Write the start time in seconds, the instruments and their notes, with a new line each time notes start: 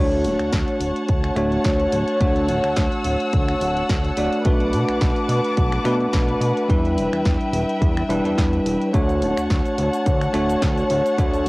Already playing: analog synth bass D2, tine electric piano A3 D4 F#4, string section C#5 F#5 A5
0.00 tine electric piano C#5
0.12 closed hi-hat
0.25 analog synth bass D1, open hi-hat
0.40 analog synth bass D2, finger snap, closed hi-hat
0.53 analog synth bass D2, kick, snare, closed hi-hat
0.68 closed hi-hat
0.80 analog synth bass D1, open hi-hat
0.96 closed hi-hat
1.09 analog synth bass D2, kick, closed hi-hat
1.24 finger snap, closed hi-hat
1.36 analog synth bass D1, tine electric piano A3 D4 F#4 C#5, finger snap, open hi-hat
1.52 closed hi-hat
1.65 analog synth bass D2, kick, snare, closed hi-hat
1.80 closed hi-hat
1.93 analog synth bass D1, open hi-hat
2.08 closed hi-hat
2.20 analog synth bass D2, tine electric piano A3 D4 F#4 C#5, string section E6, kick, closed hi-hat
2.36 closed hi-hat
2.48 analog synth bass D1, open hi-hat
2.64 analog synth bass D2, finger snap, closed hi-hat
2.76 analog synth bass D2, kick, snare, closed hi-hat
2.92 closed hi-hat
3.04 analog synth bass D1, open hi-hat
3.20 closed hi-hat
3.33 analog synth bass D2, kick, closed hi-hat
3.48 finger snap, closed hi-hat
3.61 analog synth bass D1, open hi-hat
3.77 closed hi-hat
3.89 analog synth bass D2, kick, snare, closed hi-hat
4.04 closed hi-hat
4.17 analog synth bass D1, tine electric piano A3 D4 F#4 D5, open hi-hat
4.33 closed hi-hat
4.45 analog synth bass B1, tine electric piano A3 D4 F#4 B4, string section B4 A5 D6, kick, closed hi-hat
4.60 closed hi-hat
4.73 analog synth bass B2, open hi-hat
4.89 analog synth bass B1, finger snap, closed hi-hat
5.01 analog synth bass B1, kick, snare, closed hi-hat
5.16 closed hi-hat
5.29 analog synth bass B2, open hi-hat
5.44 closed hi-hat
5.57 analog synth bass B1, kick, closed hi-hat
5.72 finger snap, closed hi-hat
5.84 analog synth bass B2, tine electric piano A3 D4 F#4 B4, finger snap, open hi-hat
6.01 closed hi-hat
6.13 analog synth bass B1, kick, snare, closed hi-hat
6.29 closed hi-hat
6.41 analog synth bass B2, open hi-hat
6.57 closed hi-hat
6.68 analog synth bass E2, tine electric piano G3 D4 E4 B4, string section E5 G5, kick, closed hi-hat
6.85 closed hi-hat
6.97 analog synth bass E1, open hi-hat
7.12 analog synth bass E2, finger snap, closed hi-hat
7.25 analog synth bass E2, kick, snare, closed hi-hat
7.41 closed hi-hat
7.53 analog synth bass E1, open hi-hat
7.69 closed hi-hat
7.81 analog synth bass E2, kick, closed hi-hat
7.97 finger snap, closed hi-hat
8.09 analog synth bass E1, tine electric piano G3 D4 E4 B4, open hi-hat
8.24 analog synth bass E2, tine electric piano G3 D4 E4 B4, closed hi-hat
8.38 analog synth bass E2, kick, snare, closed hi-hat
8.53 closed hi-hat
8.65 analog synth bass E1, open hi-hat
8.81 closed hi-hat
8.93 analog synth bass D2, tine electric piano A3 D4 F#4 C#5, string section C#5 F#5 A5, kick, closed hi-hat, shaker
9.09 closed hi-hat, shaker
9.22 analog synth bass D1, open hi-hat
9.37 analog synth bass D2, finger snap, closed hi-hat, shaker
9.50 analog synth bass D2, kick, snare, closed hi-hat, shaker
9.65 closed hi-hat, shaker
9.78 analog synth bass D1, open hi-hat
9.93 closed hi-hat, shaker
10.06 analog synth bass D2, kick, closed hi-hat, shaker
10.21 finger snap, closed hi-hat, shaker
10.33 analog synth bass D1, tine electric piano A3 D4 F#4 C#5, finger snap, open hi-hat
10.49 closed hi-hat, shaker
10.62 analog synth bass D2, kick, snare, closed hi-hat, shaker
10.77 closed hi-hat, shaker
10.90 analog synth bass D1, open hi-hat
11.06 closed hi-hat, shaker
11.18 analog synth bass D2, tine electric piano A3 D4 F#4 C#5, kick, closed hi-hat, shaker
11.33 closed hi-hat, shaker